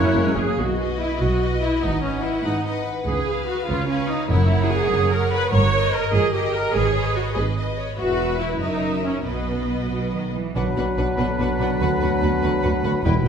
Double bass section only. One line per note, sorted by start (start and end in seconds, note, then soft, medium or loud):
0.15 0.19 F#1 soft
0.36 0.41 F#1 soft
0.58 1.10 B1 medium
1.20 1.73 B1 medium
1.83 2.34 G#1 medium
2.44 2.96 G#1 medium
3.06 3.58 C#2 medium
3.67 4.19 C#2 medium
4.30 4.81 F#1 medium
4.91 5.43 F#1 medium
5.53 6.04 G1 medium
6.13 6.65 G1 medium
6.74 7.26 G#1 medium
7.36 7.88 G#1 medium
7.99 8.57 E1 soft
8.60 9.25 F#1 soft
9.26 10.33 B1 soft
10.56 10.64 B1 soft
10.77 10.85 B1 soft
10.97 11.05 B1 soft
11.18 11.26 B1 soft
11.39 11.47 B1 soft
11.59 11.67 B1 medium
11.80 11.88 D2 medium
12.02 12.10 D2 medium
12.22 12.30 D2 medium
12.43 12.51 D2 medium
12.63 12.71 D2 medium
12.83 12.91 D2 medium
13.04 13.12 E1 medium
13.24 13.28 E1 medium